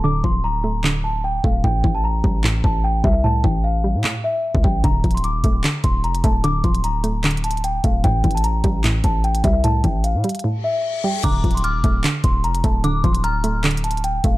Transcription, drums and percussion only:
0.24 kick medium
0.84 clap loud
1.44 kick loud
1.64 kick loud
1.84 kick medium
2.24 kick medium
2.44 clap loud
2.64 kick medium
3.04 kick loud
3.44 kick medium
4.04 clap loud
4.55 kick loud
4.64 kick loud
4.84 kick loud
4.84 closed hi-hat medium
5.04 kick medium
5.04 closed hi-hat soft
5.11 closed hi-hat medium
5.17 closed hi-hat medium
5.24 closed hi-hat medium
5.44 kick medium
5.44 closed hi-hat medium
5.64 clap loud
5.64 closed hi-hat medium
5.84 kick medium
5.84 closed hi-hat medium
6.04 closed hi-hat soft
6.15 closed hi-hat medium
6.24 kick loud
6.24 closed hi-hat medium
6.44 closed hi-hat medium
6.64 kick medium
6.64 closed hi-hat soft
6.75 closed hi-hat medium
6.84 closed hi-hat medium
7.04 closed hi-hat medium
7.24 clap loud
7.24 closed hi-hat medium
7.31 closed hi-hat medium
7.37 closed hi-hat medium
7.44 closed hi-hat medium
7.51 closed hi-hat medium
7.57 closed hi-hat soft
7.64 closed hi-hat medium
7.84 kick loud
7.84 closed hi-hat medium
8.04 kick loud
8.04 closed hi-hat medium
8.24 kick medium
8.24 closed hi-hat soft
8.31 closed hi-hat medium
8.37 closed hi-hat medium
8.44 closed hi-hat medium
8.64 kick medium
8.64 closed hi-hat medium
8.84 clap loud
8.84 closed hi-hat medium
9.04 kick medium
9.04 closed hi-hat medium
9.24 closed hi-hat soft
9.35 closed hi-hat medium
9.44 kick loud
9.44 closed hi-hat medium
9.64 closed hi-hat medium
9.84 kick medium
9.84 closed hi-hat medium
10.04 closed hi-hat medium
10.24 closed hi-hat medium
10.24 open hi-hat medium
10.29 closed hi-hat medium
10.35 closed hi-hat medium
10.39 closed hi-hat medium
11.24 kick loud
11.24 closed hi-hat medium
11.24 crash loud
11.44 kick medium
11.44 closed hi-hat soft
11.51 closed hi-hat medium
11.57 closed hi-hat medium
11.64 closed hi-hat medium
11.84 kick medium
11.84 closed hi-hat medium
12.04 clap loud
12.04 closed hi-hat medium
12.24 kick medium
12.24 closed hi-hat medium
12.44 closed hi-hat soft
12.55 closed hi-hat medium
12.64 kick loud
12.64 closed hi-hat medium
12.84 closed hi-hat medium
13.04 kick medium
13.04 closed hi-hat soft
13.15 closed hi-hat medium
13.24 closed hi-hat medium
13.44 closed hi-hat medium
13.64 clap loud
13.64 closed hi-hat medium
13.71 closed hi-hat medium
13.77 closed hi-hat medium
13.84 closed hi-hat medium
13.91 closed hi-hat medium
13.97 closed hi-hat soft
14.04 closed hi-hat medium
14.24 kick loud
14.24 closed hi-hat loud

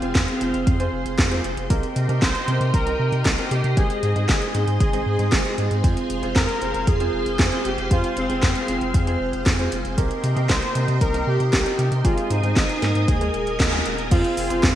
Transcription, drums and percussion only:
0.02 closed hi-hat soft
0.15 kick loud
0.15 snare loud
0.15 closed hi-hat medium
0.28 closed hi-hat soft
0.41 closed hi-hat medium
0.54 closed hi-hat soft
0.67 kick loud
0.67 closed hi-hat medium
0.80 closed hi-hat soft
1.06 closed hi-hat soft
1.19 kick loud
1.19 snare loud
1.19 closed hi-hat medium
1.32 closed hi-hat soft
1.44 closed hi-hat medium
1.57 closed hi-hat soft
1.70 kick loud
1.70 closed hi-hat medium
1.83 closed hi-hat soft
1.96 closed hi-hat medium
2.09 closed hi-hat soft
2.22 kick loud
2.22 snare loud
2.22 closed hi-hat medium
2.35 closed hi-hat soft
2.48 closed hi-hat medium
2.61 closed hi-hat soft
2.74 kick loud
2.74 closed hi-hat medium
2.87 closed hi-hat soft
3.12 closed hi-hat soft
3.25 kick loud
3.25 snare loud
3.25 closed hi-hat medium
3.38 closed hi-hat soft
3.51 closed hi-hat medium
3.64 closed hi-hat soft
3.77 kick loud
3.77 closed hi-hat medium
3.90 closed hi-hat soft
4.03 closed hi-hat medium
4.16 closed hi-hat soft
4.29 kick loud
4.29 snare loud
4.29 closed hi-hat medium
4.42 closed hi-hat soft
4.55 closed hi-hat medium
4.68 closed hi-hat soft
4.80 kick loud
4.80 closed hi-hat medium
4.93 closed hi-hat soft
5.19 closed hi-hat soft
5.32 kick loud
5.32 snare loud
5.32 closed hi-hat medium
5.45 closed hi-hat soft
5.58 closed hi-hat medium
5.71 closed hi-hat soft
5.84 kick loud
5.84 closed hi-hat medium
5.97 closed hi-hat soft
6.10 closed hi-hat medium
6.23 closed hi-hat soft
6.36 kick loud
6.36 snare loud
6.36 closed hi-hat medium
6.49 closed hi-hat soft
6.62 closed hi-hat medium
6.75 closed hi-hat soft
6.87 kick loud
6.87 closed hi-hat medium
7.00 closed hi-hat soft
7.26 closed hi-hat soft
7.39 kick loud
7.39 snare loud
7.39 closed hi-hat medium
7.52 closed hi-hat soft
7.65 closed hi-hat medium
7.78 closed hi-hat soft
7.91 kick loud
7.91 closed hi-hat medium
8.04 closed hi-hat soft
8.17 closed hi-hat medium
8.30 closed hi-hat soft
8.43 kick loud
8.43 snare loud
8.43 closed hi-hat medium
8.55 closed hi-hat soft
8.68 closed hi-hat medium
8.81 closed hi-hat soft
8.94 kick loud
8.94 closed hi-hat medium
9.07 closed hi-hat soft
9.33 closed hi-hat soft
9.46 kick loud
9.46 snare loud
9.46 closed hi-hat medium
9.59 closed hi-hat soft
9.72 closed hi-hat medium
9.85 closed hi-hat soft
9.98 kick loud
9.98 closed hi-hat medium
10.11 closed hi-hat soft
10.24 closed hi-hat medium
10.37 closed hi-hat soft
10.49 kick loud
10.49 snare loud
10.49 closed hi-hat medium
10.62 closed hi-hat soft
10.75 closed hi-hat medium
10.88 closed hi-hat soft
11.01 kick loud
11.01 closed hi-hat medium
11.14 closed hi-hat soft
11.40 closed hi-hat soft
11.53 kick loud
11.53 snare loud
11.53 closed hi-hat medium
11.66 closed hi-hat soft
11.79 closed hi-hat medium
11.92 closed hi-hat soft
12.05 kick loud
12.05 closed hi-hat loud
12.18 closed hi-hat soft
12.31 closed hi-hat medium
12.44 closed hi-hat soft
12.56 kick loud
12.56 snare loud
12.56 closed hi-hat medium
12.69 closed hi-hat soft
12.82 snare medium
12.82 closed hi-hat medium
12.95 closed hi-hat soft
13.08 kick loud
13.08 closed hi-hat loud
13.21 closed hi-hat soft
13.34 closed hi-hat soft
13.47 closed hi-hat soft
13.60 kick loud
13.60 snare loud
13.60 closed hi-hat medium
13.73 closed hi-hat soft
13.86 closed hi-hat medium
13.98 closed hi-hat soft
14.11 kick loud
14.11 closed hi-hat medium
14.11 crash loud
14.11 cabasa soft
14.24 closed hi-hat soft
14.24 cabasa soft
14.37 open hi-hat loud
14.37 cabasa medium
14.50 closed hi-hat medium
14.50 cabasa soft
14.63 kick loud
14.63 snare loud
14.63 closed hi-hat medium
14.63 cabasa soft

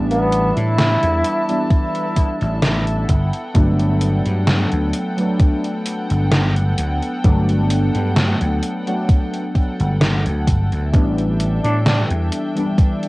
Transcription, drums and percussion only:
0.11 closed hi-hat soft
0.32 closed hi-hat medium
0.57 closed hi-hat soft
0.78 snare loud
0.78 closed hi-hat medium
1.03 closed hi-hat soft
1.24 closed hi-hat medium
1.49 closed hi-hat soft
1.70 kick loud
1.70 closed hi-hat medium
1.95 closed hi-hat soft
2.16 kick medium
2.16 closed hi-hat medium
2.41 closed hi-hat soft
2.62 snare loud
2.62 closed hi-hat medium
2.87 closed hi-hat soft
3.09 kick medium
3.09 closed hi-hat medium
3.33 closed hi-hat soft
3.55 kick loud
3.55 closed hi-hat medium
3.79 closed hi-hat soft
4.01 closed hi-hat medium
4.26 closed hi-hat soft
4.47 snare loud
4.47 closed hi-hat medium
4.72 closed hi-hat soft
4.93 closed hi-hat medium
5.18 closed hi-hat soft
5.40 kick loud
5.40 closed hi-hat medium
5.64 closed hi-hat soft
5.86 closed hi-hat medium
6.10 closed hi-hat soft
6.32 snare loud
6.32 closed hi-hat medium
6.56 closed hi-hat soft
6.78 closed hi-hat medium
7.02 closed hi-hat soft
7.24 kick loud
7.24 closed hi-hat medium
7.49 closed hi-hat soft
7.70 closed hi-hat medium
7.95 closed hi-hat soft
8.17 snare loud
8.17 closed hi-hat medium
8.41 closed hi-hat soft
8.63 closed hi-hat medium
8.87 closed hi-hat soft
9.09 kick loud
9.09 closed hi-hat medium
9.34 closed hi-hat soft
9.55 kick medium
9.55 closed hi-hat medium
9.80 closed hi-hat soft
10.01 snare loud
10.01 closed hi-hat medium
10.26 closed hi-hat soft
10.47 kick medium
10.47 closed hi-hat medium
10.72 closed hi-hat soft
10.93 kick loud
10.93 closed hi-hat medium
11.18 closed hi-hat soft
11.40 closed hi-hat medium
11.64 closed hi-hat soft
11.86 snare loud
11.86 closed hi-hat medium
12.10 closed hi-hat soft
12.32 closed hi-hat medium
12.57 closed hi-hat soft
12.78 kick loud
12.78 closed hi-hat medium
13.03 closed hi-hat soft

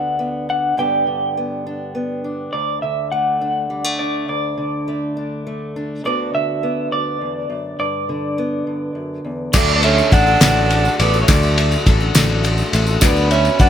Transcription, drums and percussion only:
9.53 kick loud
9.53 clap medium
9.53 crash loud
9.53 tambourine loud
9.69 tambourine soft
9.83 ride medium
9.98 clap soft
9.98 tambourine soft
10.12 kick medium
10.12 ride medium
10.12 tambourine soft
10.41 snare loud
10.41 clap loud
10.41 ride medium
10.41 tambourine medium
10.57 clap soft
10.70 ride medium
10.85 tambourine soft
11.00 ride medium
11.14 tambourine soft
11.28 kick loud
11.28 clap loud
11.28 ride medium
11.28 tambourine loud
11.43 tambourine soft
11.58 ride medium
11.72 clap soft
11.72 tambourine soft
11.86 kick medium
11.86 ride medium
11.86 tambourine soft
12.15 snare loud
12.15 clap loud
12.15 ride medium
12.15 tambourine loud
12.30 clap soft
12.44 ride medium
12.58 tambourine soft
12.73 ride medium
12.87 tambourine soft
13.01 kick loud
13.01 clap medium
13.01 ride loud
13.01 tambourine loud
13.16 tambourine soft
13.31 ride medium
13.45 clap soft
13.45 tambourine soft
13.59 kick medium
13.59 ride medium
13.59 tambourine soft

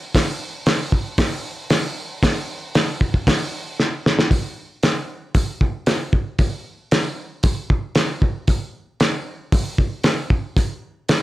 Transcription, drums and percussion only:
0.15 kick loud
0.15 snare loud
0.15 open hi-hat medium
0.66 snare loud
0.66 open hi-hat medium
0.92 kick medium
1.18 kick loud
1.18 snare loud
1.18 open hi-hat medium
1.70 snare loud
1.70 open hi-hat medium
2.23 kick loud
2.23 snare loud
2.23 open hi-hat medium
2.75 snare loud
2.75 open hi-hat medium
3.01 kick medium
3.14 kick medium
3.27 kick loud
3.27 snare loud
3.27 open hi-hat medium
3.80 snare medium
4.06 snare loud
4.19 snare loud
4.31 kick loud
4.31 open hi-hat soft
4.83 snare loud
4.83 open hi-hat medium
5.35 kick loud
5.35 open hi-hat medium
5.61 kick medium
5.86 snare loud
5.86 open hi-hat medium
6.13 kick medium
6.39 kick loud
6.39 open hi-hat medium
6.91 snare loud
6.91 open hi-hat medium
7.43 kick loud
7.43 open hi-hat medium
7.70 kick medium
7.95 snare loud
7.95 open hi-hat soft
8.22 kick medium
8.47 kick loud
8.47 open hi-hat medium
9.00 snare loud
9.00 open hi-hat medium
9.52 kick loud
9.52 open hi-hat medium
9.78 kick medium
10.04 snare loud
10.04 open hi-hat medium
10.30 kick medium
10.57 kick loud
10.57 open hi-hat medium
11.09 snare loud
11.09 open hi-hat medium

